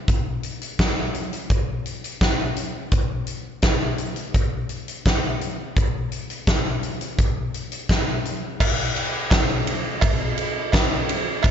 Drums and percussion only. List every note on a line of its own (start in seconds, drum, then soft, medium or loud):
0.08 kick loud
0.08 closed hi-hat medium
0.43 closed hi-hat medium
0.62 closed hi-hat medium
0.79 kick medium
0.79 snare loud
0.79 closed hi-hat medium
1.15 closed hi-hat medium
1.33 closed hi-hat soft
1.50 kick medium
1.50 closed hi-hat medium
1.86 closed hi-hat medium
2.04 closed hi-hat medium
2.21 kick medium
2.21 snare medium
2.21 closed hi-hat medium
2.57 closed hi-hat medium
2.91 kick loud
2.91 closed hi-hat medium
3.27 closed hi-hat medium
3.62 kick loud
3.62 snare loud
3.62 closed hi-hat medium
3.98 closed hi-hat medium
4.16 closed hi-hat soft
4.34 kick medium
4.34 closed hi-hat medium
4.69 closed hi-hat soft
4.88 closed hi-hat medium
5.06 kick medium
5.06 snare medium
5.06 closed hi-hat soft
5.41 closed hi-hat medium
5.76 kick loud
5.76 closed hi-hat medium
6.12 closed hi-hat medium
6.30 closed hi-hat medium
6.47 kick loud
6.47 snare loud
6.47 closed hi-hat medium
6.83 closed hi-hat medium
7.01 closed hi-hat medium
7.19 kick loud
7.19 closed hi-hat medium
7.54 closed hi-hat medium
7.72 closed hi-hat medium
7.89 kick medium
7.89 snare medium
7.89 closed hi-hat medium
8.25 closed hi-hat medium
8.60 kick loud
8.60 crash loud
8.60 cowbell loud
8.96 ride medium
9.30 kick loud
9.30 snare loud
9.30 ride medium
9.30 cowbell medium
9.67 ride medium
10.01 kick loud
10.01 ride loud
10.01 cowbell loud
10.38 ride medium
10.72 kick loud
10.72 snare loud
10.72 ride medium
10.72 cowbell medium
11.09 ride medium
11.43 kick loud
11.43 ride loud
11.43 cowbell medium